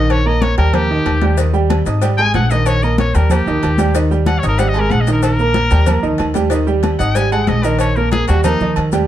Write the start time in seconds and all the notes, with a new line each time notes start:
Already playing: A#1 D#3 D#4 D#5
0.10 C#5, cowbell, high conga, low agogo
0.26 A#3 A#4 D#5 A#5, high conga
0.42 C#5, cowbell, high conga, low agogo
0.58 D#2 G3 G4 A#4 G5, cowbell, high conga, low agogo
0.73 A#3 G4 A#4 A#5, cowbell, high conga, low conga, low agogo
0.89 D#3 D#4 D#5, high conga
1.05 D#2, cowbell, high conga, low timbale, low agogo
1.21 G3 G4 G5, cowbell, high conga
1.37 D#3 D#4 D#5, cowbell, high conga, low agogo, maracas
1.53 G3 G4 G5, high conga, maracas
1.70 cowbell, high conga, low agogo, maracas
1.86 G#1 D#4 D#5 D#6, cowbell, high conga, maracas
2.02 G3 G4 G5, cowbell, high conga, low agogo, maracas
2.18 G#3 G#4 G#5, high conga, low agogo, maracas
2.34 A#1 F#5, cowbell, high conga, low timbale, low agogo, maracas
2.50 D#3 D#4 D#5, cowbell, high conga, maracas
2.66 C#5, cowbell, high conga, low agogo, maracas
2.82 A#3 A#4 D#5 A#5, high conga, maracas
2.98 C#5, cowbell, high conga, low agogo, maracas
3.15 D#2 G3 G4 A#4 G5, cowbell, high conga, low agogo, maracas
3.30 A#3 G4 A#4 A#5, cowbell, high conga, low conga, low agogo, maracas
3.46 D2 D#3 D#4 D#5, high conga, maracas
3.63 D#2, cowbell, high conga, low timbale, low agogo, maracas
3.78 G3 G4 G5, cowbell, high conga, maracas
3.95 D#3 D#4 D#5, cowbell, low agogo, maracas
4.11 G3 G4 G5, high conga, maracas
4.26 F#5, cowbell, high conga, low agogo, maracas
4.39 C#5, high conga
4.43 G#1 D#4 D#5 D#6, cowbell, maracas
4.48 A#4
4.59 G3 G4 F#5 G5, cowbell, high conga, low agogo, maracas
4.69 D#5
4.74 G#3 G#4 G#5, high conga, low agogo, maracas
4.80 A#4
4.90 A#1 F#5, cowbell, high conga, low agogo, maracas
5.01 D#5
5.07 D#3 D#4 D#5, cowbell, high conga, maracas
5.13 A#4
5.22 A#4, cowbell, high conga, low agogo, maracas
5.39 A#3 A#4 A#5, high conga, maracas
5.54 cowbell, high conga, low agogo, maracas
5.71 D#2 G3 G4 G5, cowbell, high conga, low agogo, maracas
5.86 A#3 A#4 A#5, cowbell, high conga, low conga, low agogo, maracas
6.03 D2 D#3 D#4 D#5, high conga, maracas
6.18 D#2, cowbell, high conga, low timbale, low agogo, maracas
6.34 G3 G4 G5, cowbell, high conga, maracas
6.50 D#3 D#4 D#5, cowbell, low agogo, maracas
6.67 G3 G4 G5, high conga, maracas
6.83 cowbell, high conga, low agogo, maracas
6.99 G#1 D#4 D#5 F#5 D#6, cowbell, high conga, maracas
7.15 G3 G4 G5 G#5, cowbell, high conga, low agogo, maracas
7.32 G#3 G#4 F#5 G#5, high conga, low agogo, maracas
7.47 A#1 D#5, cowbell, high conga, low timbale, low agogo, maracas
7.63 D#3 D#4 A#4 D#5, cowbell, maracas
7.79 C#5, cowbell, high conga, low agogo, maracas
7.96 A#3 A#4 A#5, high conga, maracas
8.12 G#4, cowbell, high conga, low agogo, maracas
8.28 D#2 G3 F#4 G4 G5, cowbell, high conga, low agogo, maracas
8.44 A#3 D#4 A#4 A#5, cowbell, high conga, low conga, low agogo, maracas
8.60 D2 D#3 D#4 D#5, high conga, low conga, maracas
8.76 D#2, cowbell, high conga, low agogo, maracas
8.92 G3 G4 G5, cowbell, high conga, maracas